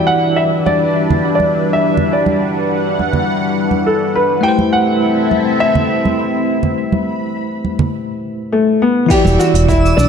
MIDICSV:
0, 0, Header, 1, 7, 480
1, 0, Start_track
1, 0, Key_signature, 1, "minor"
1, 0, Tempo, 582524
1, 1739, Time_signature, 4, 2, 24, 8
1, 8312, End_track
2, 0, Start_track
2, 0, Title_t, "Synth texture"
2, 0, Program_c, 0, 99
2, 7502, Note_on_c, 0, 88, 83
2, 8312, Note_off_c, 0, 88, 0
2, 8312, End_track
3, 0, Start_track
3, 0, Title_t, "Grand piano"
3, 0, Program_c, 1, 0
3, 55, Note_on_c, 1, 78, 89
3, 301, Note_on_c, 1, 76, 80
3, 305, Note_off_c, 1, 78, 0
3, 354, Note_off_c, 1, 76, 0
3, 547, Note_on_c, 1, 74, 80
3, 1101, Note_off_c, 1, 74, 0
3, 1113, Note_on_c, 1, 74, 74
3, 1427, Note_on_c, 1, 76, 77
3, 1436, Note_off_c, 1, 74, 0
3, 1753, Note_off_c, 1, 76, 0
3, 1754, Note_on_c, 1, 74, 68
3, 2194, Note_off_c, 1, 74, 0
3, 3185, Note_on_c, 1, 69, 78
3, 3424, Note_on_c, 1, 71, 85
3, 3429, Note_off_c, 1, 69, 0
3, 3654, Note_on_c, 1, 79, 104
3, 3669, Note_off_c, 1, 71, 0
3, 3880, Note_off_c, 1, 79, 0
3, 3894, Note_on_c, 1, 78, 88
3, 4344, Note_off_c, 1, 78, 0
3, 4617, Note_on_c, 1, 76, 96
3, 6985, Note_off_c, 1, 76, 0
3, 7024, Note_on_c, 1, 57, 84
3, 7245, Note_off_c, 1, 57, 0
3, 7267, Note_on_c, 1, 59, 87
3, 7507, Note_on_c, 1, 67, 110
3, 7511, Note_off_c, 1, 59, 0
3, 7740, Note_on_c, 1, 66, 103
3, 7750, Note_off_c, 1, 67, 0
3, 7982, Note_on_c, 1, 64, 97
3, 7987, Note_off_c, 1, 66, 0
3, 8204, Note_off_c, 1, 64, 0
3, 8215, Note_on_c, 1, 62, 93
3, 8312, Note_off_c, 1, 62, 0
3, 8312, End_track
4, 0, Start_track
4, 0, Title_t, "Analog synth pad"
4, 0, Program_c, 2, 89
4, 0, Note_on_c, 2, 55, 80
4, 0, Note_on_c, 2, 62, 81
4, 0, Note_on_c, 2, 64, 76
4, 0, Note_on_c, 2, 71, 76
4, 0, Note_on_c, 2, 76, 93
4, 1705, Note_off_c, 2, 76, 0
4, 1746, Note_on_c, 2, 78, 90
4, 3621, Note_off_c, 2, 64, 0
4, 3628, Note_off_c, 2, 71, 0
4, 3630, Note_off_c, 2, 62, 0
4, 3644, Note_off_c, 2, 78, 0
4, 3664, Note_on_c, 2, 69, 77
4, 3666, Note_on_c, 2, 60, 80
4, 3666, Note_on_c, 2, 76, 92
4, 3667, Note_on_c, 2, 64, 82
4, 5563, Note_off_c, 2, 69, 0
4, 5582, Note_on_c, 2, 83, 72
4, 6510, Note_off_c, 2, 55, 0
4, 6514, Note_off_c, 2, 60, 0
4, 6514, Note_off_c, 2, 76, 0
4, 6515, Note_off_c, 2, 64, 0
4, 6531, Note_off_c, 2, 83, 0
4, 7498, Note_on_c, 2, 71, 87
4, 7498, Note_on_c, 2, 86, 105
4, 7501, Note_on_c, 2, 76, 85
4, 8312, Note_off_c, 2, 71, 0
4, 8312, Note_off_c, 2, 76, 0
4, 8312, Note_off_c, 2, 86, 0
4, 8312, End_track
5, 0, Start_track
5, 0, Title_t, "Tine electric piano"
5, 0, Program_c, 3, 4
5, 0, Control_c, 3, 64, 127
5, 0, Note_on_c, 3, 52, 68
5, 0, Note_on_c, 3, 64, 62
5, 0, Note_on_c, 3, 66, 57
5, 0, Note_on_c, 3, 67, 63
5, 0, Note_on_c, 3, 74, 73
5, 3620, Note_off_c, 3, 52, 0
5, 3629, Note_off_c, 3, 64, 0
5, 3633, Note_on_c, 3, 57, 69
5, 3635, Note_off_c, 3, 66, 0
5, 3643, Note_off_c, 3, 67, 0
5, 3649, Note_on_c, 3, 64, 64
5, 3651, Note_off_c, 3, 74, 0
5, 3664, Note_on_c, 3, 67, 64
5, 3670, Control_c, 3, 64, 0
5, 3679, Note_on_c, 3, 71, 59
5, 3695, Note_on_c, 3, 72, 79
5, 3825, Control_c, 3, 64, 127
5, 6526, Note_off_c, 3, 57, 0
5, 6535, Note_off_c, 3, 64, 0
5, 6542, Note_off_c, 3, 67, 0
5, 6550, Note_off_c, 3, 71, 0
5, 6557, Note_off_c, 3, 72, 0
5, 7468, Note_on_c, 3, 52, 85
5, 7487, Note_on_c, 3, 64, 82
5, 7500, Note_on_c, 3, 66, 76
5, 7512, Control_c, 3, 64, 0
5, 7517, Note_on_c, 3, 67, 78
5, 7530, Note_on_c, 3, 74, 91
5, 7667, Control_c, 3, 64, 127
5, 8312, Note_off_c, 3, 52, 0
5, 8312, Note_off_c, 3, 64, 0
5, 8312, Note_off_c, 3, 66, 0
5, 8312, Note_off_c, 3, 67, 0
5, 8312, Note_off_c, 3, 74, 0
5, 8312, End_track
6, 0, Start_track
6, 0, Title_t, "Fretless electric bass"
6, 0, Program_c, 4, 35
6, 7625, Note_on_c, 4, 28, 99
6, 7710, Note_off_c, 4, 28, 0
6, 7861, Note_on_c, 4, 28, 79
6, 8170, Note_off_c, 4, 28, 0
6, 8221, Note_on_c, 4, 35, 97
6, 8312, Note_off_c, 4, 35, 0
6, 8312, End_track
7, 0, Start_track
7, 0, Title_t, "Drums"
7, 548, Note_on_c, 9, 63, 59
7, 630, Note_off_c, 9, 63, 0
7, 910, Note_on_c, 9, 64, 67
7, 992, Note_off_c, 9, 64, 0
7, 1153, Note_on_c, 9, 63, 67
7, 1235, Note_off_c, 9, 63, 0
7, 1626, Note_on_c, 9, 64, 68
7, 1709, Note_off_c, 9, 64, 0
7, 1865, Note_on_c, 9, 63, 76
7, 1948, Note_off_c, 9, 63, 0
7, 2467, Note_on_c, 9, 63, 57
7, 2550, Note_off_c, 9, 63, 0
7, 2582, Note_on_c, 9, 64, 67
7, 2664, Note_off_c, 9, 64, 0
7, 3058, Note_on_c, 9, 63, 71
7, 3141, Note_off_c, 9, 63, 0
7, 3779, Note_on_c, 9, 63, 80
7, 3861, Note_off_c, 9, 63, 0
7, 4378, Note_on_c, 9, 63, 60
7, 4460, Note_off_c, 9, 63, 0
7, 4741, Note_on_c, 9, 64, 75
7, 4823, Note_off_c, 9, 64, 0
7, 4988, Note_on_c, 9, 63, 78
7, 5071, Note_off_c, 9, 63, 0
7, 5462, Note_on_c, 9, 64, 62
7, 5545, Note_off_c, 9, 64, 0
7, 5706, Note_on_c, 9, 63, 82
7, 5788, Note_off_c, 9, 63, 0
7, 6300, Note_on_c, 9, 63, 58
7, 6382, Note_off_c, 9, 63, 0
7, 6420, Note_on_c, 9, 64, 78
7, 6503, Note_off_c, 9, 64, 0
7, 7499, Note_on_c, 9, 36, 104
7, 7501, Note_on_c, 9, 42, 60
7, 7503, Note_on_c, 9, 49, 96
7, 7505, Note_on_c, 9, 69, 57
7, 7582, Note_off_c, 9, 36, 0
7, 7583, Note_off_c, 9, 42, 0
7, 7585, Note_off_c, 9, 49, 0
7, 7587, Note_off_c, 9, 69, 0
7, 7620, Note_on_c, 9, 63, 91
7, 7636, Note_on_c, 9, 69, 41
7, 7703, Note_off_c, 9, 63, 0
7, 7719, Note_off_c, 9, 69, 0
7, 7748, Note_on_c, 9, 69, 86
7, 7830, Note_off_c, 9, 69, 0
7, 7869, Note_on_c, 9, 42, 71
7, 7875, Note_on_c, 9, 69, 44
7, 7952, Note_off_c, 9, 42, 0
7, 7958, Note_off_c, 9, 69, 0
7, 7980, Note_on_c, 9, 36, 93
7, 7983, Note_on_c, 9, 42, 54
7, 7993, Note_on_c, 9, 69, 59
7, 8063, Note_off_c, 9, 36, 0
7, 8065, Note_off_c, 9, 42, 0
7, 8075, Note_off_c, 9, 69, 0
7, 8122, Note_on_c, 9, 69, 41
7, 8204, Note_off_c, 9, 69, 0
7, 8219, Note_on_c, 9, 63, 62
7, 8231, Note_on_c, 9, 69, 92
7, 8302, Note_off_c, 9, 63, 0
7, 8312, Note_off_c, 9, 69, 0
7, 8312, End_track
0, 0, End_of_file